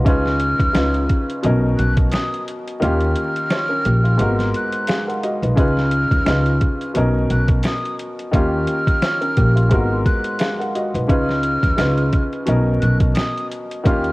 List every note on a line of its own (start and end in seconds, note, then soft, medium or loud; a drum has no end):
0.04 0.54 C#2 loud
0.04 0.68 C#3 medium
0.04 0.68 C#4 medium
0.04 0.69 D#4 medium
0.04 0.69 F4 medium
0.04 0.70 B4 loud
0.04 1.40 F6 loud
0.04 kick loud
0.04 closed hi-hat medium
0.26 snare soft
0.40 closed hi-hat medium
0.60 0.73 D#2 medium
0.60 kick medium
0.60 closed hi-hat medium
0.73 1.06 C#2 loud
0.73 1.43 C#3 medium
0.73 1.43 C#4 medium
0.73 1.44 D#4 medium
0.73 1.44 F4 medium
0.73 1.45 B4 medium
0.73 finger snap medium
0.73 snare loud
0.73 closed hi-hat medium
0.94 closed hi-hat soft
1.09 kick medium
1.09 closed hi-hat medium
1.29 closed hi-hat medium
1.42 1.75 B1 loud
1.42 2.69 B2 medium
1.42 2.69 B3 medium
1.42 2.70 C#4 medium
1.42 2.70 D#4 medium
1.42 2.71 A#4 loud
1.42 closed hi-hat loud
1.77 2.09 B1 loud
1.77 1.95 F#6 medium
1.77 closed hi-hat medium
1.97 kick loud
1.97 closed hi-hat medium
2.11 2.43 D#6 medium
2.11 finger snap medium
2.11 snare loud
2.11 closed hi-hat loud
2.34 closed hi-hat soft
2.48 closed hi-hat medium
2.67 closed hi-hat medium
2.80 3.13 D#2 loud
2.80 3.43 D#3 medium
2.80 3.44 A#3 medium
2.80 3.45 C#4 medium
2.80 3.45 F4 medium
2.80 3.45 G4 loud
2.80 4.50 F6 loud
2.80 closed hi-hat medium
3.00 closed hi-hat soft
3.16 closed hi-hat medium
3.36 closed hi-hat medium
3.50 3.69 F4 medium
3.50 3.69 C#5 medium
3.50 finger snap medium
3.50 snare loud
3.50 closed hi-hat medium
3.69 3.84 C#4 medium
3.69 3.84 A#4 medium
3.85 4.16 A#1 loud
3.85 4.04 A#3 medium
3.85 4.03 G4 medium
3.85 closed hi-hat medium
4.04 4.37 F4 medium
4.04 closed hi-hat medium
4.18 4.50 G#1 loud
4.18 5.44 G#2 medium
4.18 5.45 G#3 medium
4.18 4.27 A#3 medium
4.18 4.55 F#4 medium
4.18 4.55 A#4 loud
4.18 closed hi-hat loud
4.26 5.49 B3 medium
4.39 snare soft
4.39 closed hi-hat soft
4.54 5.05 F#6 medium
4.54 closed hi-hat medium
4.72 closed hi-hat medium
4.87 5.07 G#4 medium
4.87 5.06 F5 medium
4.87 finger snap medium
4.87 snare loud
4.87 closed hi-hat loud
5.07 5.22 A#4 medium
5.07 5.22 F#5 medium
5.07 closed hi-hat soft
5.23 5.42 F#4 medium
5.23 5.41 D#5 medium
5.23 closed hi-hat medium
5.42 5.58 B1 medium
5.42 5.56 D#4 medium
5.42 5.58 B4 medium
5.42 closed hi-hat medium
5.56 6.05 C#2 loud
5.56 6.19 C#3 medium
5.56 6.20 C#4 medium
5.56 6.20 D#4 medium
5.56 6.21 F4 medium
5.56 6.21 B4 loud
5.56 6.92 F6 loud
5.56 kick loud
5.56 closed hi-hat medium
5.77 snare soft
5.91 closed hi-hat medium
6.11 6.25 D#2 medium
6.11 kick medium
6.11 closed hi-hat medium
6.25 6.57 C#2 loud
6.25 6.95 C#3 medium
6.25 6.94 C#4 medium
6.25 6.95 D#4 medium
6.25 6.96 F4 medium
6.25 6.96 B4 medium
6.25 finger snap medium
6.25 snare loud
6.25 closed hi-hat medium
6.46 closed hi-hat soft
6.61 kick medium
6.61 closed hi-hat medium
6.81 closed hi-hat medium
6.94 7.26 B1 loud
6.94 8.20 B2 medium
6.94 8.21 B3 medium
6.94 8.21 C#4 medium
6.94 8.22 D#4 medium
6.94 8.22 A#4 loud
6.94 closed hi-hat loud
7.30 7.61 B1 loud
7.30 7.48 F#6 medium
7.30 closed hi-hat medium
7.48 kick loud
7.48 closed hi-hat medium
7.63 7.96 D#6 medium
7.63 finger snap medium
7.63 snare loud
7.63 closed hi-hat loud
7.86 closed hi-hat soft
8.00 closed hi-hat medium
8.19 closed hi-hat medium
8.32 8.64 D#2 loud
8.32 8.95 D#3 loud
8.32 8.96 A#3 medium
8.32 8.96 C#4 medium
8.32 8.97 F4 medium
8.32 10.02 F6 loud
8.32 kick loud
8.32 closed hi-hat medium
8.36 8.97 G4 loud
8.67 closed hi-hat medium
8.87 kick medium
8.87 closed hi-hat medium
9.02 9.21 F4 medium
9.02 9.21 C#5 medium
9.02 finger snap medium
9.02 snare loud
9.02 closed hi-hat medium
9.21 9.36 C#4 medium
9.21 9.36 A#4 medium
9.21 closed hi-hat soft
9.37 9.68 A#1 loud
9.37 9.55 A#3 medium
9.37 9.55 G4 medium
9.37 kick medium
9.37 closed hi-hat medium
9.56 9.89 F4 medium
9.56 closed hi-hat medium
9.70 10.02 G#1 loud
9.70 10.96 G#2 medium
9.70 10.97 G#3 medium
9.70 9.79 A#3 medium
9.70 10.06 F#4 medium
9.70 10.07 A#4 loud
9.70 kick loud
9.70 closed hi-hat loud
9.78 11.00 B3 medium
10.05 10.56 F#6 medium
10.05 kick loud
10.05 closed hi-hat medium
10.24 closed hi-hat medium
10.39 10.58 G#4 medium
10.39 10.58 F5 medium
10.39 finger snap medium
10.39 snare loud
10.39 closed hi-hat loud
10.59 10.74 A#4 medium
10.59 10.74 F#5 medium
10.59 closed hi-hat soft
10.75 10.93 F#4 medium
10.75 10.93 D#5 medium
10.75 closed hi-hat medium
10.94 11.09 B1 medium
10.94 11.08 D#4 medium
10.94 11.10 B4 medium
10.94 closed hi-hat medium
11.07 11.57 C#2 loud
11.07 11.71 C#3 medium
11.07 11.72 C#4 medium
11.07 11.72 D#4 medium
11.07 11.73 F4 medium
11.07 11.73 B4 loud
11.07 12.43 F6 loud
11.07 kick loud
11.07 closed hi-hat medium
11.29 snare soft
11.43 closed hi-hat medium
11.63 11.77 D#2 medium
11.63 kick medium
11.63 closed hi-hat medium
11.76 12.09 C#2 loud
11.76 12.46 C#3 medium
11.76 12.46 C#4 medium
11.76 12.47 D#4 medium
11.76 12.48 F4 medium
11.76 12.48 B4 loud
11.76 finger snap medium
11.76 snare loud
11.76 closed hi-hat medium
11.98 closed hi-hat soft
12.13 kick medium
12.13 closed hi-hat medium
12.33 closed hi-hat medium
12.46 12.78 B1 loud
12.46 13.72 B2 medium
12.46 13.73 B3 medium
12.46 13.73 C#4 medium
12.46 13.74 D#4 medium
12.46 13.74 A#4 loud
12.46 closed hi-hat loud
12.81 13.13 B1 loud
12.81 12.98 F#6 medium
12.81 closed hi-hat medium
13.00 kick loud
13.00 closed hi-hat medium
13.15 13.47 D#6 medium
13.15 finger snap medium
13.15 snare loud
13.15 closed hi-hat loud
13.37 closed hi-hat soft
13.51 closed hi-hat medium
13.71 closed hi-hat medium
13.83 14.12 D#2 loud
13.83 14.12 D#3 medium
13.83 14.12 A#3 medium
13.83 14.12 C#4 medium
13.83 14.12 F4 medium
13.83 14.12 G4 loud
13.83 14.12 F6 loud
13.83 kick loud
13.83 closed hi-hat medium
14.04 closed hi-hat soft